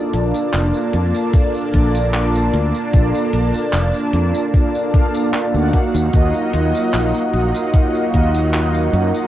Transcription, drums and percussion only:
0.13 closed hi-hat medium
0.34 tambourine medium
0.53 clap loud
0.53 closed hi-hat medium
0.53 tambourine soft
0.74 tambourine soft
0.93 closed hi-hat medium
1.15 tambourine medium
1.33 kick loud
1.33 closed hi-hat medium
1.33 tambourine soft
1.54 tambourine soft
1.74 kick medium
1.74 closed hi-hat medium
1.95 closed hi-hat soft
1.95 tambourine medium
2.14 clap loud
2.14 closed hi-hat medium
2.14 tambourine soft
2.35 tambourine soft
2.53 closed hi-hat medium
2.74 tambourine medium
2.93 kick loud
2.93 closed hi-hat medium
2.93 tambourine soft
3.14 tambourine soft
3.33 closed hi-hat medium
3.54 tambourine medium
3.73 clap loud
3.73 closed hi-hat medium
3.73 tambourine soft
3.94 tambourine soft
4.13 closed hi-hat medium
4.35 tambourine medium
4.54 kick loud
4.54 closed hi-hat medium
4.54 tambourine soft
4.75 tambourine soft
4.94 kick loud
4.94 closed hi-hat medium
5.14 closed hi-hat soft
5.14 tambourine medium
5.33 clap loud
5.33 closed hi-hat medium
5.33 tambourine soft
5.54 tambourine soft
5.73 kick medium
5.73 closed hi-hat medium
5.95 tambourine medium
6.13 kick loud
6.13 closed hi-hat medium
6.13 tambourine soft
6.34 tambourine soft
6.53 closed hi-hat medium
6.74 tambourine medium
6.94 clap loud
6.94 closed hi-hat medium
6.94 tambourine soft
7.14 tambourine soft
7.33 closed hi-hat medium
7.55 tambourine medium
7.73 kick loud
7.73 closed hi-hat medium
7.73 tambourine soft
7.95 tambourine soft
8.14 kick medium
8.14 closed hi-hat medium
8.35 closed hi-hat soft
8.35 tambourine medium
8.54 clap loud
8.54 closed hi-hat medium
8.54 tambourine soft
8.75 tambourine soft
8.94 closed hi-hat medium
9.15 tambourine medium

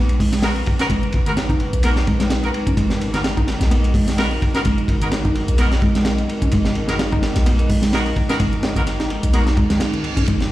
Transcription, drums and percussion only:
0.09 closed hi-hat soft
0.09 ride soft
0.20 kick medium
0.20 open hi-hat medium
0.32 snare soft
0.32 closed hi-hat medium
0.43 snare loud
0.43 closed hi-hat medium
0.43 ride medium
0.56 closed hi-hat soft
0.66 kick medium
0.66 ride medium
0.79 snare soft
0.79 closed hi-hat medium
0.90 kick loud
0.90 closed hi-hat soft
0.90 ride medium
1.03 closed hi-hat soft
1.12 kick medium
1.12 ride medium
1.26 closed hi-hat medium
1.26 high conga medium
1.26 low conga medium
1.37 snare loud
1.37 closed hi-hat medium
1.37 ride medium
1.49 kick medium
1.49 closed hi-hat soft
1.60 ride medium
1.73 closed hi-hat medium
1.83 closed hi-hat soft
1.83 ride medium
1.83 high conga medium
1.96 snare soft
1.96 closed hi-hat soft
2.07 kick medium
2.07 ride medium
2.20 snare medium
2.20 closed hi-hat medium
2.30 snare loud
2.30 closed hi-hat soft
2.30 ride medium
2.43 closed hi-hat soft
2.43 ride soft
2.54 ride medium
2.67 kick medium
2.67 closed hi-hat medium
2.77 kick loud
2.77 closed hi-hat soft
2.77 ride medium
2.90 snare medium
2.90 closed hi-hat soft
3.01 ride medium
3.13 snare soft
3.13 closed hi-hat medium
3.13 high conga medium
3.13 low conga medium
3.24 snare loud
3.24 closed hi-hat medium
3.24 ride medium
3.37 kick medium
3.37 closed hi-hat soft
3.47 snare medium
3.47 ride medium
3.61 snare medium
3.61 closed hi-hat medium
3.71 closed hi-hat soft
3.71 ride medium
3.71 high conga medium
3.84 closed hi-hat soft
3.84 ride soft
3.94 kick medium
3.94 open hi-hat medium
4.08 snare soft
4.08 closed hi-hat medium
4.18 snare loud
4.18 closed hi-hat soft
4.18 ride medium
4.31 closed hi-hat soft
4.42 kick medium
4.42 ride medium
4.54 snare soft
4.54 closed hi-hat medium
4.65 kick medium
4.65 closed hi-hat soft
4.65 ride medium
4.78 closed hi-hat soft
4.88 kick medium
4.88 ride medium
5.02 closed hi-hat medium
5.02 high conga medium
5.02 low conga medium
5.12 snare loud
5.12 closed hi-hat soft
5.12 ride medium
5.25 kick medium
5.25 closed hi-hat soft
5.35 ride medium
5.48 closed hi-hat medium
5.58 closed hi-hat soft
5.58 ride medium
5.58 high conga medium
5.72 snare medium
5.72 closed hi-hat soft
5.82 kick medium
5.82 ride medium
5.95 snare soft
5.95 closed hi-hat medium
6.05 snare loud
6.05 closed hi-hat medium
6.05 ride medium
6.18 closed hi-hat soft
6.18 ride soft
6.29 ride medium
6.42 kick medium
6.42 closed hi-hat medium
6.52 kick loud
6.52 closed hi-hat soft
6.52 ride medium
6.65 snare medium
6.65 closed hi-hat soft
6.75 ride medium
6.88 snare soft
6.88 closed hi-hat medium
6.88 high conga medium
6.88 low conga medium
6.99 snare loud
6.99 closed hi-hat medium
6.99 ride medium
7.12 kick medium
7.12 closed hi-hat soft
7.22 snare medium
7.22 ride medium
7.35 snare soft
7.35 closed hi-hat medium
7.46 closed hi-hat soft
7.46 ride medium
7.46 high conga medium
7.59 closed hi-hat soft
7.59 ride soft
7.70 kick medium
7.70 open hi-hat medium
7.82 snare soft
7.82 closed hi-hat medium
7.93 snare loud
7.93 closed hi-hat soft
7.93 ride medium
8.06 closed hi-hat soft
8.16 kick medium
8.16 ride medium
8.29 snare soft
8.29 closed hi-hat medium
8.40 kick loud
8.40 closed hi-hat medium
8.40 ride medium
8.53 closed hi-hat soft
8.63 snare loud
8.63 ride medium
8.76 kick medium
8.76 closed hi-hat medium
8.76 high conga medium
8.76 low conga medium
8.87 snare soft
8.87 closed hi-hat medium
8.87 ride medium
9.00 snare soft
9.00 closed hi-hat soft
9.10 ride medium
9.23 closed hi-hat medium
9.33 closed hi-hat medium
9.33 ride medium
9.33 high conga medium
9.47 snare soft
9.47 closed hi-hat soft
9.57 kick medium
9.57 ride medium
9.70 snare medium
9.70 closed hi-hat medium
9.70 low conga medium
9.80 snare loud
9.80 closed hi-hat medium
9.80 ride loud
9.93 closed hi-hat soft
9.93 ride soft
9.93 low conga medium
10.04 ride medium
10.17 kick loud
10.17 closed hi-hat medium
10.28 kick medium
10.28 closed hi-hat medium
10.28 ride medium
10.41 snare medium
10.41 closed hi-hat soft

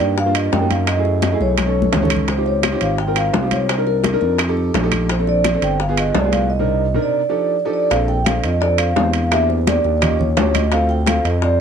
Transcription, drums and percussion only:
0.00 high bongo soft
0.00 high timbale medium
0.18 high bongo medium
0.18 high conga soft
0.35 high bongo soft
0.35 high conga soft
0.35 high timbale medium
0.35 claves medium
0.53 high bongo medium
0.53 low bongo medium
0.53 high conga medium
0.53 low timbale medium
0.71 high conga medium
0.71 high timbale medium
0.87 high bongo medium
0.87 high conga soft
0.87 high timbale medium
0.87 claves medium
1.05 high bongo soft
1.05 high conga soft
1.22 high bongo medium
1.22 high conga medium
1.22 high timbale medium
1.22 low timbale medium
1.41 high bongo soft
1.41 high conga soft
1.58 high bongo medium
1.58 high conga medium
1.58 high timbale medium
1.58 claves medium
1.82 high conga medium
1.93 high bongo medium
1.93 low bongo medium
1.93 low conga medium
1.93 high timbale medium
1.93 low timbale medium
2.05 low conga medium
2.10 high bongo soft
2.10 high timbale medium
2.10 claves medium
2.16 low conga medium
2.28 high bongo medium
2.28 high conga soft
2.28 high timbale medium
2.46 high bongo soft
2.46 high conga soft
2.63 high bongo medium
2.63 high conga medium
2.63 high timbale medium
2.63 low timbale medium
2.63 claves medium
2.81 high bongo soft
2.81 high timbale medium
2.98 high bongo medium
2.98 high conga soft
3.16 high bongo soft
3.16 high conga soft
3.16 high timbale medium
3.16 claves medium
3.34 high bongo medium
3.34 low bongo medium
3.34 high conga medium
3.34 low timbale medium
3.51 high conga medium
3.51 high timbale medium
3.69 high bongo medium
3.69 high conga soft
3.69 high timbale medium
3.69 claves medium
3.87 high bongo soft
3.87 high conga soft
4.04 high bongo medium
4.04 high conga medium
4.04 high timbale medium
4.04 low timbale medium
4.21 high bongo soft
4.21 high conga soft
4.38 high bongo medium
4.38 high conga soft
4.38 high timbale medium
4.38 claves medium
4.57 high conga soft
4.74 high bongo medium
4.74 low bongo medium
4.74 high conga medium
4.74 high timbale medium
4.74 low timbale medium
4.92 high bongo soft
4.92 high conga medium
4.92 high timbale medium
4.92 claves medium
5.09 high bongo medium
5.09 high conga soft
5.09 high timbale medium
5.27 high bongo soft
5.27 high conga soft
5.44 high bongo medium
5.44 high conga medium
5.44 high timbale medium
5.44 low timbale medium
5.44 claves medium
5.62 high bongo soft
5.62 high timbale medium
5.80 high bongo medium
5.80 high conga soft
5.97 high bongo soft
5.97 high conga soft
5.97 high timbale medium
5.97 claves medium
6.15 high bongo medium
6.15 low bongo medium
6.15 high conga medium
6.15 low timbale medium
6.33 high conga medium
6.33 high timbale medium
7.91 high bongo medium
7.91 high conga soft
7.91 high timbale medium
8.08 high bongo soft
8.08 high conga soft
8.26 high bongo medium
8.26 high conga loud
8.26 high timbale medium
8.26 low timbale medium
8.26 claves medium
8.44 high bongo soft
8.44 high timbale medium
8.61 high bongo medium
8.61 high conga soft
8.78 high bongo soft
8.78 high conga soft
8.78 high timbale medium
8.78 claves medium
8.96 high bongo medium
8.96 low bongo medium
8.96 high conga medium
8.96 low timbale medium
9.13 high timbale medium
9.32 high bongo medium
9.32 high conga soft
9.32 high timbale medium
9.32 claves medium
9.50 high bongo soft
9.50 high conga soft
9.67 high bongo medium
9.67 high conga loud
9.67 high timbale medium
9.67 low timbale medium
9.84 high bongo soft
9.84 high conga soft
10.02 high bongo medium
10.02 high conga soft
10.02 low conga medium
10.02 high timbale medium
10.02 claves medium
10.21 high conga soft
10.21 low conga medium
10.37 high bongo medium
10.37 low bongo medium
10.37 high conga medium
10.37 high timbale medium
10.37 low timbale medium
10.54 high bongo soft
10.54 high conga medium
10.54 high timbale medium
10.54 claves medium
10.72 high bongo medium
10.72 high conga soft
10.72 high timbale medium
10.89 high bongo soft
10.89 high conga soft
11.06 high bongo medium
11.06 high conga medium
11.06 high timbale medium
11.06 low timbale medium
11.06 claves medium
11.25 high bongo soft
11.25 high timbale medium
11.42 high bongo medium
11.42 high conga soft

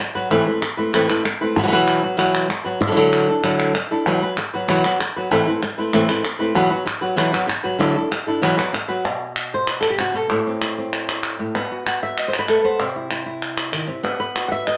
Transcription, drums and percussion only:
0.62 clap medium
0.94 clap medium
1.10 clap medium
1.25 clap medium
1.88 clap medium
2.19 clap medium
2.35 clap medium
2.50 clap medium
3.13 clap medium
3.44 clap medium
3.60 clap medium
3.75 clap medium
4.37 clap medium
4.69 clap medium
4.84 clap medium
5.00 clap medium
5.63 clap medium
5.93 clap medium
6.09 clap medium
6.25 clap medium
6.87 clap medium
7.18 clap medium
7.34 clap medium
7.49 clap medium
8.12 clap medium
8.43 clap medium
8.59 clap medium
8.74 clap medium
9.36 clap medium
9.67 clap medium
9.83 clap medium
9.99 clap medium
10.62 clap medium
10.93 clap medium
11.09 clap medium
11.23 clap medium
11.55 clap soft
11.87 clap medium
12.18 clap medium
12.34 clap medium
12.48 clap medium
12.80 clap soft
13.11 clap medium
13.42 clap medium
13.58 clap medium
13.73 clap medium
14.36 clap medium
14.67 clap medium

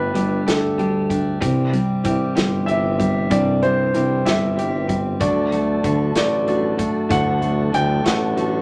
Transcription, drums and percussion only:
0.15 closed hi-hat medium
0.48 snare medium
0.48 closed hi-hat medium
0.79 closed hi-hat soft
1.10 kick medium
1.10 closed hi-hat medium
1.42 kick medium
1.42 closed hi-hat medium
1.73 closed hi-hat soft
2.04 kick medium
2.04 closed hi-hat medium
2.36 snare medium
2.36 closed hi-hat medium
2.68 closed hi-hat soft
3.00 kick medium
3.00 closed hi-hat medium
3.31 kick loud
3.31 closed hi-hat medium
3.62 closed hi-hat soft
3.94 closed hi-hat medium
4.26 snare medium
4.26 closed hi-hat medium
4.58 closed hi-hat soft
4.89 kick medium
4.89 closed hi-hat soft
5.20 kick medium
5.20 closed hi-hat medium
5.52 closed hi-hat soft
5.84 kick medium
5.84 closed hi-hat medium
6.15 snare medium
6.15 closed hi-hat medium
6.48 closed hi-hat soft
6.79 kick medium
6.79 closed hi-hat medium
7.10 kick loud
7.10 closed hi-hat medium
7.42 closed hi-hat soft
7.74 closed hi-hat medium
8.05 snare loud
8.05 closed hi-hat medium
8.37 closed hi-hat soft

